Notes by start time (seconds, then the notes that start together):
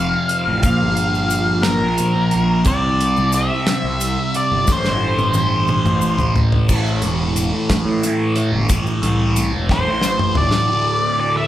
Already playing: F1 F2 C3 F3 F5
0.29 closed hi-hat
0.47 A1
0.63 A#1 A#2 F3 A#3 F5, kick, closed hi-hat, maracas
0.82 G1
0.97 closed hi-hat
1.15 maracas
1.30 closed hi-hat, maracas
1.63 A#4, snare, closed hi-hat
1.82 A#1
1.98 A#1, closed hi-hat, maracas
2.16 A#1
2.31 A#1, closed hi-hat
2.65 C2 C3 G3 C4 D5, kick, closed hi-hat, maracas
3.00 closed hi-hat
3.17 C2, maracas
3.32 E5, closed hi-hat, maracas
3.67 snare, closed hi-hat
3.84 C2
4.01 closed hi-hat, maracas
4.34 D5, closed hi-hat
4.52 G1
4.66 A1 A2 E3 A3, kick, snare, maracas
4.72 C5
4.84 G1, snare, maracas
5.18 high tom, maracas
5.34 high tom, maracas
5.68 mid tom, maracas
5.85 A1, mid tom, maracas
6.01 A1, maracas
6.18 A1, floor tom, maracas
6.35 A1, floor tom, maracas
6.52 floor tom
6.69 A1 A2 E3 A3, kick, crash, maracas
6.87 maracas
7.02 E1 E3 A3, closed hi-hat, maracas
7.36 closed hi-hat, maracas
7.52 A2
7.70 A2 E3 A3, kick, snare, closed hi-hat
7.85 A2
8.03 A2 E3 A3, closed hi-hat, maracas
8.36 E3 A3, closed hi-hat
8.52 G1
8.69 G1 A2 E3 A3, kick, closed hi-hat, maracas
8.86 maracas
9.02 C2 E3 A3, closed hi-hat
9.36 closed hi-hat, maracas
9.53 E1
9.69 A2 E3 A3 C5, kick, snare
9.86 A1
10.01 A2 E3, snare, maracas
10.06 A3
10.19 mid tom
10.35 G1 E3 A3 D5, floor tom
10.51 snare
10.68 D2 A2 D3
11.20 D5
11.37 E5